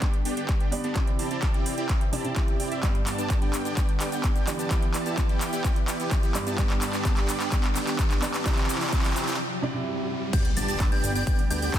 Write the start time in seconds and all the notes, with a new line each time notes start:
Already playing: G2 D3 B3 D4 G4 D5
0.02 B3 G4, kick, clap, closed hi-hat
0.14 closed hi-hat
0.25 B3 D4 G4 D5 G5, open hi-hat
0.37 B3 D4 G4 D5 G5, closed hi-hat
0.49 kick, clap, closed hi-hat
0.60 B3 D4 G4 D5 G5, closed hi-hat
0.72 B3 D4 G4 D5, open hi-hat
0.84 B3 D4 G4 D5 A5, closed hi-hat
0.94 C3 E3 C4 E4 G4 D5 G5, kick, clap, closed hi-hat
1.07 closed hi-hat
1.19 C4 E4 G4 D5 A5, open hi-hat
1.31 C4 E4 G4 D5 A5, closed hi-hat
1.42 kick, clap, closed hi-hat
1.54 C4 E4 G4 D5 G5, closed hi-hat
1.66 open hi-hat
1.78 C4 E4 G4 D5 G5, closed hi-hat
1.89 kick, clap, closed hi-hat
2.01 closed hi-hat
2.12 C3 C4 E4 G4 D5 A5, open hi-hat
2.23 C3 C4 E4 G4 E5, closed hi-hat
2.36 E4 G4 D5, kick, clap, closed hi-hat
2.48 closed hi-hat
2.60 C4 E4 G4 D5 G5, open hi-hat
2.71 C4 E4 G4 D5 E5, closed hi-hat
2.82 G2 D3 B3 D4 G4 D5 G5, kick, clap, closed hi-hat, riser, shaker
2.95 closed hi-hat
3.07 B3 D4 G4 D5 A5, clap, open hi-hat, shaker
3.18 B3 D4 G4 D5 A5, closed hi-hat, shaker
3.30 kick, clap, closed hi-hat, shaker
3.42 B3 D4 G4 D5 G5, closed hi-hat
3.54 clap, open hi-hat, shaker
3.65 B3 D4 G4 D5 G5, closed hi-hat, shaker
3.77 B3 D4 G4 D5, kick, clap, closed hi-hat, shaker
3.89 closed hi-hat
4.00 B3 D4 G4 D5 G5, clap, open hi-hat, shaker
4.12 B3 D4 G4 D5 G5, closed hi-hat, shaker
4.24 kick, clap, closed hi-hat, shaker
4.35 B3 D4 G4 D5 G5, closed hi-hat, shaker
4.47 E3 B3 D4 G4 D5, clap, open hi-hat, shaker
4.59 B3 D4 G4 D5 A5, closed hi-hat, shaker
4.70 E3 B3 E4 G4 D5 G5, kick, clap, closed hi-hat, shaker
4.82 closed hi-hat
4.94 B3 E4 G4 D5 A5, clap, open hi-hat, shaker
5.06 B3 E4 G4 D5 A5, closed hi-hat, shaker
5.18 kick, clap, closed hi-hat, shaker
5.29 B3 E4 G4 D5 G5, closed hi-hat
5.41 clap, open hi-hat, shaker
5.53 B3 E4 G4 D5 G5, closed hi-hat, shaker
5.64 B3 E4 G4 D5, kick, clap, closed hi-hat, shaker
5.76 closed hi-hat
5.88 B3 E4 G4 D5 G5, clap, open hi-hat, shaker
6.00 B3 E4 G4 D5 G5, closed hi-hat, shaker
6.11 kick, clap, closed hi-hat, shaker
6.23 B3 E4 G4 D5 G5, closed hi-hat, shaker
6.34 G2 B3 E4 G4 D5, clap, open hi-hat, shaker
6.47 B3 E4 G4 D5 A5, closed hi-hat, shaker
6.57 G2 D3 B3 D4 G4 D5 G5, kick, clap, closed hi-hat, shaker
6.70 clap, closed hi-hat
6.82 B3 D4 G4 D5 A5, clap, open hi-hat, shaker
6.93 B3 D4 G4 D5 A5, clap, closed hi-hat, shaker
7.05 kick, clap, closed hi-hat, shaker
7.17 B3 D4 G4 D5 G5, clap, closed hi-hat
7.29 clap, open hi-hat, shaker
7.40 B3 D4 G4 D5 G5, clap, closed hi-hat, shaker
7.52 D4 D5, kick, clap, closed hi-hat, shaker
7.64 clap, closed hi-hat
7.75 B3 D4 G4 D5 G5, clap, open hi-hat, shaker
7.87 B3 D4 G4 D5 G5, clap, closed hi-hat, shaker
7.99 kick, clap, closed hi-hat, shaker
8.11 B3 D4 G4 D5 G5, clap, closed hi-hat, shaker
8.22 B3 D4 G4 D5, clap, open hi-hat, shaker
8.34 B3 D4 G4 D5 A5, clap, closed hi-hat, shaker
8.44 C3 E3 C4 E4 G4 D5 G5, kick, clap, closed hi-hat, shaker
8.52 clap
8.57 clap, closed hi-hat
8.63 clap
8.69 C4 E4 G4 D5 A5, clap, open hi-hat, shaker
8.75 clap
8.81 C4 E4 G4 D5 A5, clap, closed hi-hat, shaker
8.87 clap
8.93 kick, clap, closed hi-hat, shaker
8.98 clap
9.04 C4 E4 G4 D5 G5, clap, open hi-hat, shaker
9.10 clap
9.16 clap, open hi-hat, shaker
9.22 clap
9.28 C4 E4 G4 D5 G5, clap, closed hi-hat, shaker
9.34 clap
9.62 C3 C4 E4 G4 D5
9.73 C3 C4 E4 G4 E5
10.33 D3 G3 B3 D4 G4 D5 G5 G6, kick, closed hi-hat, crash, impact, shaker
10.45 closed hi-hat
10.57 G1 B3 D4 G4 D5 A5 A6, open hi-hat, shaker
10.68 B3 D4 G4 D5 A5 A6, closed hi-hat, shaker
10.80 kick, clap, closed hi-hat, shaker
10.92 B3 D4 G4 D5 G5 G6, closed hi-hat
11.03 G1, open hi-hat, shaker
11.15 B3 D4 G4 D5 G5 G6, closed hi-hat, shaker
11.27 B3 D4 G4 D5 G5 G6, kick, closed hi-hat, shaker
11.39 closed hi-hat
11.50 D2 B3 D4 G4 D5 G5 G6, open hi-hat, shaker
11.62 B3 D4 G4 D5 G5 G6, closed hi-hat, shaker
11.74 kick, clap, closed hi-hat, shaker